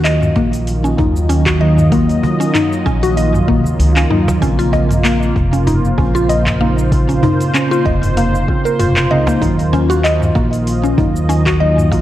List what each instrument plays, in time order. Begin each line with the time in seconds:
Already playing: upright bass D#2, synth keys D#3 F#3 A#3 F4, analog synth pad D#3 A#3
0.04 synth pluck D#5, clap, open hi-hat, shaker
0.22 mid tom, shaker
0.36 upright bass A#1, synth pluck A#3, kick, cajon slap
0.45 analog synth pad F4
0.53 open hi-hat, shaker
0.67 open hi-hat, shaker
0.74 analog synth pad D#5
0.84 synth pluck C#4, shaker
0.97 upright bass D#2, synth keys D#3 F#3 A#3 F4, synth pluck D#4, kick, cajon bass, mid tom
1.02 analog synth pad F#3
1.16 shaker
1.29 synth pluck C#4, open hi-hat, shaker
1.46 synth pluck F#4, kick, cajon slap, clap, open hi-hat, shaker
1.60 synth keys D#3 F#3 A#3 D#4, synth pluck D#5
1.78 mid tom, shaker
1.90 synth keys D#3 F#3 A#3 F4, synth pluck A#3, kick, open hi-hat, shaker
2.09 open hi-hat, shaker
2.23 cajon bass
2.40 synth pluck C#4, open hi-hat, shaker
2.54 synth pluck D#4, clap, mid tom, open hi-hat, shaker
2.72 shaker
2.86 upright bass A#1, synth pluck C#4, kick, cajon slap
3.03 synth pluck F#4, open hi-hat, shaker
3.17 synth pluck D#5, open hi-hat, shaker
3.34 mid tom, shaker
3.47 upright bass A#1, synth keys D#3 F#3 A#3 F4, synth pluck A#3, kick
3.65 upright bass D#2, shaker
3.79 upright bass C#2, open hi-hat, shaker
3.96 synth pluck C#4, cajon slap, clap, open hi-hat, shaker
4.10 upright bass D#2, synth keys D#3 F#3 A#3 D#4, synth pluck D#4, mid tom
4.28 cajon bass, cajon slap, shaker
4.40 upright bass A#1, analog synth pad A#2, synth keys C#3 A#3 C4 F4, synth pluck C#4, kick, open hi-hat, shaker
4.59 synth pluck F4, open hi-hat, shaker
4.73 synth pluck D#5, cajon bass, cajon slap
4.91 mid tom, open hi-hat, shaker
5.04 synth pluck A#3, clap, open hi-hat, shaker
5.23 shaker
5.36 upright bass F1, kick, cajon slap
5.53 synth pluck C#4, open hi-hat, shaker
5.67 synth pluck D#4, mid tom, open hi-hat, shaker
5.73 analog synth pad C5
5.85 shaker
5.98 upright bass A#1, synth keys C#3 A#3 C4 F4, synth pluck C#4, cajon bass, kick
6.15 synth pluck F4, shaker
6.29 synth pluck D#5, open hi-hat, shaker
6.46 kick, cajon slap, clap, mid tom, open hi-hat, shaker
6.60 synth keys C#3 A#3 C4 D#4, synth pluck A#3
6.79 shaker
6.90 synth keys C#3 A#3 C4 F4, kick, open hi-hat, shaker
7.09 synth pluck C#4, open hi-hat, shaker
7.23 synth pluck D#4, cajon bass, mid tom
7.41 open hi-hat, shaker
7.54 synth pluck C#4, clap, open hi-hat, shaker
7.71 synth pluck F4, shaker
7.85 upright bass F1, synth pluck D#5, kick, cajon slap
8.03 mid tom, open hi-hat, shaker
8.17 synth pluck A#3, open hi-hat, shaker
8.35 shaker
8.47 synth keys C#3 A#3 C4 F4, kick
8.65 synth pluck A#4, shaker
8.79 upright bass F1, synth pluck F4, mid tom, open hi-hat, shaker
8.96 cajon slap, clap, open hi-hat, shaker
9.10 upright bass C#2, synth keys C#3 A#3 C4 D#4, synth pluck D#5
9.27 synth pluck A#3, cajon bass, cajon slap, shaker
9.40 upright bass D#2, synth keys D#3 F#3 A#3, analog synth pad D#3, synth pluck D#4, kick, mid tom, open hi-hat, shaker
9.44 synth keys F4
9.59 open hi-hat, shaker
9.73 synth pluck C#4, cajon bass, cajon slap
9.90 synth pluck F#4, open hi-hat, shaker
10.04 synth pluck D#5, clap, open hi-hat, shaker
10.22 mid tom, shaker
10.35 upright bass A#1, synth pluck A#3, kick, cajon slap
10.51 analog synth pad D#5, open hi-hat, shaker
10.67 open hi-hat, shaker
10.84 synth pluck C#4, shaker
10.97 upright bass D#2, synth keys D#3 F#3 A#3 F4, synth pluck D#4, cajon bass, kick, mid tom
11.16 shaker
11.21 analog synth pad F#3
11.29 synth pluck C#4, open hi-hat, shaker
11.46 synth pluck F#4, kick, cajon slap, clap, open hi-hat, shaker
11.60 synth keys D#3 F#3 A#3 D#4, synth pluck D#5
11.78 mid tom, shaker
11.90 synth keys D#3 F#3 A#3 F4, synth pluck A#3, kick, open hi-hat, shaker